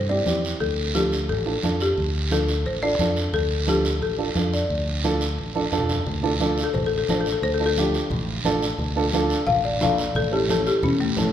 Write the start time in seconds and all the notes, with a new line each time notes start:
Already playing: G2
0.09 C4 E4 G4 D5
0.26 E2 C4 E4 G4, high conga, short guiro
0.45 short guiro
0.60 D2 A4, high conga, long guiro
0.94 D4 F4 G4 A4, high conga, short guiro
1.12 short guiro
1.29 A1 A4, high conga, long guiro
1.45 D4 F4 A4
1.63 F2 D4 F4 A4, high conga, short guiro
1.80 G4, short guiro
1.97 D2, high conga, long guiro
2.31 D4 F4 A4, high conga, short guiro
2.48 short guiro
2.66 A1 C5, high conga, long guiro
2.82 D4 F4 A4 D5
2.99 F2 D4 F4 A4, high conga, short guiro
3.16 short guiro
3.33 D2 A4, high conga, long guiro
3.67 D4 F4 G4 A4, high conga, short guiro
3.85 short guiro
4.01 A1 A4, high conga, long guiro
4.18 D4 F4 A4
4.35 F2 D4 F4 A4, high conga, short guiro
4.54 D5, short guiro
4.70 D2, high conga, long guiro
5.04 D4 F4 A4, high conga, short guiro
5.21 short guiro
5.38 A1, high conga, long guiro
5.55 D4 F4 A4, high conga
5.72 F2 D4 F4 A4, short guiro
5.78 low conga
5.89 low conga, short guiro
6.07 D2, high conga, low conga, long guiro
6.23 D4 F4 A4
6.40 D4 F4 A4, high conga, short guiro
6.58 short guiro
6.64 A4
6.74 A1 C5, high conga, low conga, long guiro
6.86 A4
6.98 A4
7.09 A1 D4 F4 A4 C5, high conga, short guiro
7.21 A4
7.26 short guiro
7.33 A4
7.42 D2 C5, high conga, long guiro
7.54 A4
7.59 D4 F4 A4
7.66 A4
7.77 D4 F4 G4, high conga, short guiro
7.94 short guiro
8.10 A1, high conga, low conga, long guiro
8.44 A1 D4 F4 A4, high conga, short guiro
8.63 short guiro
8.78 D2, high conga, low conga, long guiro
8.96 D4 F4 A4
9.12 D4 F4 A4, high conga, short guiro
9.30 short guiro
9.47 A1 F5, high conga, low conga, long guiro
9.65 D5
9.81 A#1 D4 F4 A4 F5, high conga, low conga, short guiro
9.98 D5, short guiro
10.15 A1 A4, high conga, low conga, long guiro
10.32 C#4 E4 G4 A4
10.49 C#4 E4 A4, high conga, short guiro
10.67 G4, short guiro
10.83 E2 C#4, high conga, low conga, long guiro
11.00 A3
11.17 A1 C#4 E4 A4, high conga, low conga, short guiro